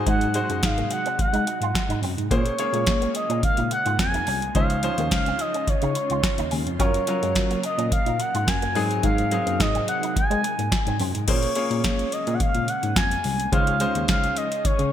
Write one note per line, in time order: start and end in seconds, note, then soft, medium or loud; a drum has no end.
0.00 2.28 C3 medium
0.00 2.27 F#3 medium
0.00 0.24 G#3 medium
0.00 6.76 G#3 medium
0.00 0.24 D#4 medium
0.00 2.28 D#4 medium
0.00 0.24 F#4 medium
0.00 2.28 F#4 medium
0.00 0.28 C5 medium
0.06 0.39 G#2 loud
0.06 0.19 G#3 medium
0.06 0.67 F#5 loud
0.06 kick loud
0.06 closed hi-hat loud
0.21 closed hi-hat medium
0.34 1.16 G#3 medium
0.34 1.16 D#4 medium
0.34 1.16 F#4 medium
0.34 1.16 C5 medium
0.34 muted clean electric guitar stroke soft
0.34 closed hi-hat medium
0.49 0.63 F#2 medium
0.49 0.61 G#3 medium
0.49 closed hi-hat medium
0.63 0.84 G#2 medium
0.63 0.92 F5 loud
0.63 kick loud
0.63 snare loud
0.63 closed hi-hat medium
0.78 0.89 A#3 medium
0.78 closed hi-hat soft
0.91 1.18 F#5 loud
0.91 muted clean electric guitar stroke soft
0.91 closed hi-hat medium
1.06 1.17 C4 medium
1.06 closed hi-hat soft
1.19 1.25 G#3 soft
1.19 2.00 F#5 loud
1.19 kick loud
1.19 closed hi-hat medium
1.33 1.43 G#3 medium
1.33 1.45 D#4 medium
1.33 closed hi-hat medium
1.47 muted clean electric guitar stroke soft
1.47 closed hi-hat medium
1.61 1.71 G#2 medium
1.61 1.73 F4 medium
1.61 closed hi-hat soft
1.75 muted clean electric guitar stroke soft
1.75 kick loud
1.75 snare loud
1.75 closed hi-hat medium
1.89 1.99 G#2 medium
1.89 2.01 D#4 medium
1.89 closed hi-hat medium
2.02 2.14 F#2 medium
2.02 2.16 C4 medium
2.02 open hi-hat medium
2.17 2.27 G#2 medium
2.17 closed hi-hat soft
2.31 2.42 A#2 loud
2.31 4.53 C#3 medium
2.31 2.52 A#3 medium
2.31 4.53 A#3 medium
2.31 2.44 A#3 medium
2.31 4.53 C#4 medium
2.31 2.52 C#4 medium
2.31 8.72 F4 medium
2.31 2.52 G#4 medium
2.31 2.52 C5 medium
2.31 3.11 C#5 medium
2.31 kick loud
2.31 closed hi-hat loud
2.46 closed hi-hat medium
2.59 3.40 A#3 medium
2.59 3.40 C#4 medium
2.59 3.40 G#4 medium
2.59 3.41 C#5 medium
2.59 muted clean electric guitar stroke soft
2.59 closed hi-hat medium
2.73 2.84 A#2 loud
2.73 2.85 G#3 medium
2.73 closed hi-hat medium
2.87 3.08 A#3 medium
2.87 kick loud
2.87 snare loud
2.87 closed hi-hat medium
3.02 3.13 A#3 medium
3.02 closed hi-hat soft
3.15 3.42 D#5 medium
3.15 muted clean electric guitar stroke soft
3.15 closed hi-hat medium
3.30 3.40 A#2 loud
3.30 3.41 C#4 medium
3.30 closed hi-hat medium
3.43 3.70 F5 loud
3.43 kick loud
3.43 closed hi-hat medium
3.57 3.68 A#2 medium
3.57 3.69 D#4 medium
3.57 closed hi-hat medium
3.71 3.98 F#5 loud
3.71 muted clean electric guitar stroke soft
3.71 closed hi-hat medium
3.86 3.96 G#2 medium
3.86 3.97 F4 medium
3.86 closed hi-hat soft
3.99 4.20 F2 medium
3.99 4.52 G#5 loud
3.99 muted clean electric guitar stroke soft
3.99 kick loud
3.99 snare loud
3.99 closed hi-hat medium
4.14 4.25 D#4 medium
4.14 closed hi-hat medium
4.27 4.48 C2 medium
4.27 4.40 C#4 medium
4.27 open hi-hat medium
4.42 closed hi-hat soft
4.55 4.88 C#2 loud
4.55 8.72 C#3 medium
4.55 4.76 F3 medium
4.55 4.76 C#4 medium
4.55 6.77 C#4 medium
4.55 4.68 C#4 medium
4.55 4.76 D#4 medium
4.55 6.77 D#4 medium
4.55 4.76 C5 medium
4.55 5.08 F5 loud
4.55 kick loud
4.55 closed hi-hat loud
4.70 closed hi-hat medium
4.83 5.65 F3 medium
4.83 5.65 C#4 medium
4.83 5.65 D#4 medium
4.83 5.65 C5 medium
4.83 muted clean electric guitar stroke soft
4.83 closed hi-hat medium
4.98 5.08 D#2 loud
4.98 5.10 A#3 medium
4.98 closed hi-hat medium
5.11 5.33 C#2 medium
5.11 5.42 F5 loud
5.11 kick loud
5.11 snare loud
5.11 closed hi-hat medium
5.26 5.38 C4 medium
5.26 closed hi-hat soft
5.39 5.70 D#5 medium
5.39 muted clean electric guitar stroke soft
5.39 closed hi-hat medium
5.54 5.65 C#4 medium
5.54 closed hi-hat medium
5.67 5.73 C#3 soft
5.67 6.52 C#5 loud
5.67 kick loud
5.67 closed hi-hat medium
5.82 5.92 C#3 loud
5.82 5.94 D#4 medium
5.82 closed hi-hat medium
5.95 muted clean electric guitar stroke soft
5.95 closed hi-hat medium
6.10 6.20 C#2 medium
6.10 6.22 F4 medium
6.10 closed hi-hat soft
6.23 muted clean electric guitar stroke medium
6.23 kick loud
6.23 snare loud
6.23 closed hi-hat medium
6.38 6.48 D#2 medium
6.38 6.50 D#4 medium
6.38 closed hi-hat medium
6.51 6.63 D#2 medium
6.51 6.64 C#4 medium
6.51 open hi-hat medium
6.66 6.76 F2 loud
6.66 closed hi-hat soft
6.79 6.91 F#2 loud
6.79 11.24 F#3 medium
6.79 7.00 F#3 medium
6.79 8.74 A#3 medium
6.79 7.00 C#4 medium
6.79 7.00 F4 medium
6.79 6.92 F#4 medium
6.79 11.24 A#4 medium
6.79 7.00 A#4 medium
6.79 7.60 C#5 medium
6.79 kick loud
6.79 closed hi-hat loud
6.94 closed hi-hat medium
7.07 7.89 F#3 medium
7.07 7.89 C#4 medium
7.07 7.89 F4 medium
7.07 7.89 A#4 medium
7.07 muted clean electric guitar stroke soft
7.07 closed hi-hat medium
7.22 7.36 F#2 medium
7.22 7.34 G#3 medium
7.22 closed hi-hat medium
7.35 7.57 F#3 medium
7.35 kick loud
7.35 snare loud
7.35 closed hi-hat medium
7.50 7.62 A#3 medium
7.50 closed hi-hat soft
7.63 7.91 D#5 loud
7.63 muted clean electric guitar stroke soft
7.63 closed hi-hat medium
7.78 7.88 A#2 loud
7.78 7.89 C#4 medium
7.78 closed hi-hat medium
7.92 8.22 F5 loud
7.92 kick loud
7.92 closed hi-hat loud
8.06 8.16 A#2 medium
8.06 8.18 D#4 medium
8.06 closed hi-hat medium
8.19 8.50 F#5 loud
8.19 muted clean electric guitar stroke medium
8.19 closed hi-hat medium
8.34 8.45 G#2 medium
8.34 8.46 F4 medium
8.34 closed hi-hat medium
8.47 8.76 F#2 medium
8.47 9.04 G#5 loud
8.47 muted clean electric guitar stroke medium
8.47 kick loud
8.47 snare loud
8.47 closed hi-hat medium
8.62 8.74 A#3 medium
8.62 closed hi-hat medium
8.75 8.97 G#2 medium
8.75 11.26 C3 medium
8.75 9.21 F#3 medium
8.75 8.88 G#3 medium
8.75 11.26 G#3 medium
8.75 9.21 C4 medium
8.75 9.21 D#4 medium
8.75 11.26 D#4 medium
8.75 9.22 G#4 loud
8.75 open hi-hat medium
8.91 closed hi-hat medium
9.03 9.36 G#2 loud
9.03 9.16 G#3 medium
9.03 9.62 F5 loud
9.03 kick loud
9.03 closed hi-hat loud
9.18 closed hi-hat medium
9.31 10.13 F#3 medium
9.31 10.13 C4 medium
9.31 10.13 D#4 medium
9.31 10.13 G#4 medium
9.31 muted clean electric guitar stroke soft
9.31 closed hi-hat medium
9.46 9.60 F#2 medium
9.46 9.58 A#3 loud
9.46 closed hi-hat medium
9.60 9.81 G#2 medium
9.60 9.88 D#5 loud
9.60 kick loud
9.60 snare loud
9.60 closed hi-hat medium
9.75 9.86 C4 medium
9.75 closed hi-hat medium
9.88 10.15 F#5 medium
9.88 muted clean electric guitar stroke soft
9.88 closed hi-hat medium
10.03 10.14 D#4 medium
10.03 closed hi-hat medium
10.16 10.22 G#3 soft
10.16 10.97 G#5 loud
10.16 kick loud
10.16 closed hi-hat loud
10.30 10.41 G#3 loud
10.30 10.42 C4 medium
10.30 closed hi-hat medium
10.44 muted clean electric guitar stroke soft
10.44 closed hi-hat medium
10.58 10.69 G#2 medium
10.58 10.70 A#3 medium
10.58 closed hi-hat soft
10.72 muted clean electric guitar stroke soft
10.72 kick loud
10.72 snare loud
10.72 closed hi-hat medium
10.86 10.97 G#2 medium
10.86 10.98 C4 medium
10.86 closed hi-hat medium
11.00 11.11 F#2 loud
11.00 11.13 C4 medium
11.00 open hi-hat medium
11.15 11.25 G#2 medium
11.15 closed hi-hat medium
11.28 11.39 A#2 loud
11.28 13.50 C#3 medium
11.28 14.93 G#3 medium
11.28 11.49 A#3 medium
11.28 13.50 A#3 medium
11.28 11.49 C#4 medium
11.28 13.50 C#4 medium
11.28 11.49 F4 medium
11.28 11.49 G#4 medium
11.28 14.93 G#4 loud
11.28 11.49 C5 medium
11.28 12.14 C#5 loud
11.28 kick loud
11.28 closed hi-hat loud
11.28 crash loud
11.43 closed hi-hat medium
11.55 12.37 A#3 medium
11.55 12.37 C#4 medium
11.55 12.37 F4 medium
11.55 12.38 G#4 medium
11.55 12.38 C#5 medium
11.55 closed hi-hat medium
11.71 11.81 A#2 loud
11.71 closed hi-hat soft
11.84 12.06 A#3 medium
11.84 kick loud
11.84 snare loud
11.84 closed hi-hat medium
11.99 closed hi-hat soft
12.12 12.35 D#5 loud
12.12 closed hi-hat medium
12.27 12.37 A#2 loud
12.27 closed hi-hat medium
12.34 12.43 F#5 medium
12.40 12.71 F5 loud
12.40 kick loud
12.40 closed hi-hat loud
12.55 12.65 A#2 medium
12.55 closed hi-hat medium
12.68 12.97 F#5 loud
12.68 closed hi-hat medium
12.83 12.93 G#2 medium
12.83 closed hi-hat soft
12.96 13.18 F2 medium
12.96 13.49 G#5 loud
12.96 kick loud
12.96 snare loud
12.96 closed hi-hat medium
13.11 closed hi-hat medium
13.24 13.46 C2 loud
13.24 open hi-hat medium
13.40 closed hi-hat medium
13.52 13.85 C#2 loud
13.52 14.93 C#3 medium
13.52 13.73 G#3 medium
13.52 14.93 C#4 medium
13.52 13.73 C#4 medium
13.52 14.93 D#4 medium
13.52 13.73 D#4 medium
13.52 13.73 F4 medium
13.52 13.73 C5 medium
13.52 14.05 F5 loud
13.52 kick loud
13.52 closed hi-hat loud
13.67 closed hi-hat medium
13.80 14.62 G#3 medium
13.80 14.62 C#4 medium
13.80 14.62 D#4 medium
13.80 14.62 F4 medium
13.80 14.62 C5 medium
13.80 closed hi-hat medium
13.95 14.05 D#2 loud
13.95 closed hi-hat medium
14.08 14.30 C#2 medium
14.08 14.39 F5 loud
14.08 kick loud
14.08 snare loud
14.08 closed hi-hat medium
14.24 closed hi-hat soft
14.37 14.67 D#5 loud
14.37 closed hi-hat medium
14.52 closed hi-hat medium
14.65 14.71 C#3 medium
14.65 14.93 C#5 medium
14.65 kick loud
14.65 closed hi-hat loud
14.79 14.89 C#3 loud
14.79 closed hi-hat medium